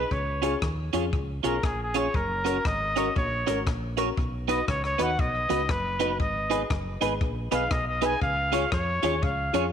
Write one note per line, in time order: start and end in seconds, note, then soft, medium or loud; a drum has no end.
0.00 0.13 B4 loud
0.11 0.54 C#2 loud
0.11 0.62 C#5 medium
0.11 kick loud
0.42 0.53 C#4 medium
0.42 0.51 C#4 medium
0.42 0.54 F4 medium
0.42 0.52 F4 medium
0.42 0.54 G#4 medium
0.42 0.52 G#4 loud
0.42 0.54 C#5 medium
0.42 closed hi-hat loud
0.62 0.89 D#2 loud
0.62 kick loud
0.62 cross-stick loud
0.93 1.10 F2 loud
0.93 1.02 C#4 medium
0.93 1.04 C#4 medium
0.93 1.04 F4 medium
0.93 1.02 F4 medium
0.93 1.05 G#4 medium
0.93 1.03 G#4 loud
0.93 1.05 C#5 loud
0.93 closed hi-hat medium
1.13 1.40 C#2 medium
1.13 1.19 F4 soft
1.13 1.19 G#4 soft
1.13 kick loud
1.43 1.61 B1 medium
1.43 1.55 C#4 medium
1.43 1.53 C#4 medium
1.43 1.55 F4 medium
1.43 1.53 F4 medium
1.43 1.55 G#4 medium
1.43 1.53 G#4 loud
1.43 1.66 A#4 medium
1.43 1.55 C#5 medium
1.43 closed hi-hat medium
1.63 2.07 A#1 medium
1.63 1.81 G#4 medium
1.63 kick loud
1.63 cross-stick loud
1.83 1.99 G#4 medium
1.94 2.04 C#4 medium
1.94 2.06 C#4 medium
1.94 2.04 F4 medium
1.94 2.06 F4 medium
1.94 2.06 G#4 medium
1.94 2.04 G#4 medium
1.94 2.06 C#5 medium
1.94 2.17 C#5 medium
1.94 closed hi-hat medium
2.14 2.58 F#1 loud
2.14 2.68 A#4 loud
2.14 kick loud
2.45 2.56 C#4 medium
2.45 2.54 C#4 medium
2.45 2.56 F#4 medium
2.45 2.54 F#4 medium
2.45 2.57 A#4 medium
2.45 2.55 A#4 loud
2.45 2.57 C#5 medium
2.45 closed hi-hat loud
2.65 3.08 G#1 loud
2.65 3.16 D#5 loud
2.65 kick loud
2.65 cross-stick loud
2.96 3.05 C#4 medium
2.96 3.07 C#4 medium
2.96 3.05 F#4 medium
2.96 3.08 F#4 loud
2.96 3.08 A#4 loud
2.96 3.06 A#4 loud
2.96 3.08 C#5 loud
2.96 closed hi-hat medium
3.16 3.43 A#1 loud
3.16 3.63 C#5 medium
3.16 kick loud
3.46 3.64 G#1 medium
3.46 3.55 C#4 medium
3.46 3.58 C#4 medium
3.46 3.58 F#4 medium
3.46 3.56 F#4 medium
3.46 3.58 A#4 medium
3.46 3.56 A#4 loud
3.46 3.59 C#5 medium
3.46 cross-stick medium
3.46 closed hi-hat medium
3.67 4.10 A#1 loud
3.67 muted clean electric guitar stroke soft
3.67 kick loud
3.67 cross-stick loud
3.97 4.06 C#4 medium
3.97 4.08 C#4 medium
3.97 4.06 F#4 medium
3.97 4.09 F#4 medium
3.97 4.09 A#4 loud
3.97 4.07 A#4 loud
3.97 4.09 C#5 loud
3.97 closed hi-hat medium
4.17 4.61 B1 loud
4.17 kick loud
4.48 4.59 B3 medium
4.48 4.57 D#4 medium
4.48 4.59 D#4 medium
4.48 4.57 F#4 medium
4.48 4.59 F#4 medium
4.48 4.57 B4 loud
4.48 4.60 B4 medium
4.48 4.67 D#5 loud
4.48 closed hi-hat loud
4.68 4.95 C#2 loud
4.68 4.84 C#5 loud
4.68 kick loud
4.68 cross-stick loud
4.84 5.04 C#5 loud
4.84 cross-stick medium
4.98 5.16 D#2 medium
4.98 5.10 B3 medium
4.98 5.07 D#4 loud
4.98 5.10 D#4 medium
4.98 5.08 F#4 medium
4.98 5.10 F#4 medium
4.98 5.10 B4 loud
4.98 5.08 B4 loud
4.98 closed hi-hat medium
5.02 5.21 F#5 loud
5.19 5.46 B1 loud
5.19 5.72 D#5 loud
5.19 kick loud
5.49 5.67 C#2 medium
5.49 5.60 B3 medium
5.49 5.58 D#4 medium
5.49 5.61 D#4 medium
5.49 5.58 F#4 medium
5.49 5.61 F#4 loud
5.49 5.59 B4 medium
5.49 5.61 B4 medium
5.49 closed hi-hat medium
5.69 6.20 F#1 loud
5.69 6.20 B4 medium
5.69 kick loud
5.69 cross-stick loud
6.00 6.11 B3 medium
6.00 6.09 D#4 medium
6.00 6.11 D#4 medium
6.00 6.09 F#4 medium
6.00 6.11 F#4 medium
6.00 6.11 B4 medium
6.00 6.09 B4 loud
6.00 closed hi-hat medium
6.20 6.63 G#1 loud
6.20 6.67 D#5 medium
6.20 kick loud
6.50 6.61 B3 medium
6.50 6.61 D#4 medium
6.50 6.59 D#4 medium
6.50 6.62 G#4 loud
6.50 6.60 G#4 medium
6.50 6.62 B4 loud
6.50 6.60 B4 loud
6.50 closed hi-hat medium
6.70 6.97 F#1 loud
6.70 kick loud
6.70 cross-stick loud
7.00 7.18 G#1 medium
7.00 7.12 B3 medium
7.00 7.10 D#4 medium
7.00 7.12 D#4 medium
7.00 7.10 G#4 medium
7.00 7.12 G#4 medium
7.00 7.10 B4 loud
7.00 7.13 B4 loud
7.00 closed hi-hat medium
7.21 7.47 A#1 loud
7.21 7.27 G#4 soft
7.21 7.27 B4 soft
7.21 kick loud
7.51 7.68 B1 medium
7.51 7.63 B3 medium
7.51 7.60 D#4 medium
7.51 7.63 D#4 medium
7.51 7.60 G#4 medium
7.51 7.63 G#4 medium
7.51 7.61 B4 loud
7.51 7.63 B4 loud
7.51 7.73 F5 loud
7.51 cross-stick medium
7.51 closed hi-hat medium
7.71 8.14 B1 loud
7.71 7.87 D#5 loud
7.71 muted clean electric guitar stroke soft
7.71 kick loud
7.71 cross-stick loud
7.88 8.07 D#5 loud
8.01 8.13 B3 medium
8.01 8.11 D#4 medium
8.01 8.13 D#4 medium
8.01 8.11 G#4 medium
8.01 8.13 G#4 medium
8.01 8.11 B4 loud
8.01 8.13 B4 medium
8.01 8.21 G#5 loud
8.01 closed hi-hat medium
8.22 8.65 C#2 loud
8.22 8.69 F5 loud
8.22 kick loud
8.52 8.63 C#4 medium
8.52 8.61 F4 loud
8.52 8.64 F4 medium
8.52 8.61 G#4 medium
8.52 8.64 G#4 medium
8.52 8.62 C#5 loud
8.52 8.64 C#5 medium
8.52 closed hi-hat medium
8.72 8.99 F2 loud
8.72 9.25 C#5 loud
8.72 kick loud
8.72 cross-stick loud
9.02 9.20 D#2 medium
9.02 9.14 C#4 medium
9.02 9.12 F4 medium
9.02 9.14 F4 medium
9.02 9.12 G#4 medium
9.02 9.15 G#4 loud
9.02 9.12 C#5 loud
9.02 9.15 C#5 loud
9.02 closed hi-hat medium
9.22 9.50 C#2 loud
9.22 9.29 G#4 soft
9.22 9.29 C#5 soft
9.22 9.72 F5 medium
9.22 kick loud
9.53 9.70 F2 medium
9.53 9.65 C#4 medium
9.53 9.62 F4 medium
9.53 9.65 F4 medium
9.53 9.63 G#4 medium
9.53 9.65 G#4 medium
9.53 9.63 C#5 loud
9.53 9.65 C#5 medium
9.53 closed hi-hat medium